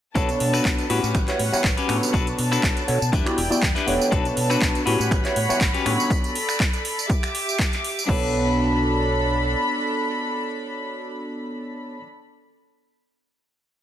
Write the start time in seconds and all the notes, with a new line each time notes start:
0.15 B1 B3 D4 F#4 A4 B4 C#5 A5, kick, closed hi-hat, tambourine
0.29 closed hi-hat, tambourine
0.40 B2, muted clean electric guitar stroke, open hi-hat
0.53 D4 F#4 A4 B4, finger snap, tambourine
0.65 B1, kick, clap, closed hi-hat
0.79 closed hi-hat, tambourine
0.89 A2 G3 B3 C#4 E4 F#4 G4 B4 C#5 F#5, open hi-hat
1.03 A2, tambourine
1.15 A1, finger snap, kick, closed hi-hat, tambourine
1.28 B3 E4 F#4 G4 C#5, clap, closed hi-hat, tambourine
1.39 A2, muted clean electric guitar stroke, open hi-hat
1.52 B3 E4 F#4 G4 C#5, muted fingered electric bass stroke, tambourine
1.64 A1, kick, clap, closed hi-hat, tambourine
1.77 C#4 F#4 G4 B4, closed hi-hat, tambourine
1.88 A2 B3 D4 F#4 A4 C#5, finger snap, open hi-hat
2.03 tambourine
2.13 B1 D4 F#4 A4 B4 A5, kick, closed hi-hat, tambourine
2.27 closed hi-hat, tambourine
2.38 B2, muted clean electric guitar stroke, open hi-hat
2.51 D4 F#4 A4 B4, finger snap, tambourine
2.63 B1, kick, clap, closed hi-hat, tambourine
2.77 closed hi-hat, tambourine
2.87 B2 B3 D4 F#4 A4 C#5, open hi-hat
3.01 B2, tambourine
3.12 E2 D4 E4 G4 B4 D5 G5, kick, closed hi-hat, tambourine
3.25 B3 E4 F#4 G4 D5, finger snap, closed hi-hat, tambourine
3.37 E1, muted clean electric guitar stroke, open hi-hat
3.50 B3 E4 F#4 G4 D5, tambourine
3.62 E2, kick, clap, closed hi-hat, tambourine
3.75 D4 E4 G4 B4, clap, closed hi-hat, tambourine
3.86 E1 B3 D4 F#4 A4 C#5, open hi-hat
4.01 tambourine
4.11 B1 D4 F#4 A4 B4 A5, kick, closed hi-hat, tambourine
4.25 closed hi-hat, tambourine
4.36 B2, muted clean electric guitar stroke, open hi-hat
4.50 D4 F#4 A4 B4, finger snap, tambourine
4.62 B1, kick, clap, closed hi-hat, tambourine
4.75 closed hi-hat, tambourine
4.86 A2 G3 B3 C#4 E4 F#4 G4 B4 C#5 F#5 B5, open hi-hat
5.00 A2, tambourine
5.11 A1, finger snap, kick, closed hi-hat, tambourine
5.24 B3 E4 F#4 G4 C#5, clap, closed hi-hat, tambourine
5.35 A2, muted clean electric guitar stroke, open hi-hat
5.49 B3 E4 F#4 G4 C#5, muted fingered electric bass stroke, tambourine
5.61 A1, kick, clap, closed hi-hat, tambourine
5.74 C#4 F#4 G4 B4, closed hi-hat, tambourine
5.85 A2 B3 D4 F#4 A4 C#5, finger snap, open hi-hat
6.00 tambourine
6.10 A4 D5, kick, closed hi-hat, tambourine
6.24 closed hi-hat, tambourine
6.35 open hi-hat
6.49 finger snap, tambourine
6.60 kick, clap, closed hi-hat, tambourine
6.73 closed hi-hat, tambourine
6.85 open hi-hat
6.99 tambourine
7.09 G4 E5 D6, kick, closed hi-hat, tambourine
7.23 finger snap, closed hi-hat, tambourine
7.35 open hi-hat
7.49 tambourine
7.59 kick, clap, closed hi-hat, tambourine
7.73 clap, closed hi-hat, tambourine
7.84 open hi-hat
7.99 tambourine
8.06 B1 B3 D4 F#4 A4 B4 C#5 B5, kick, crash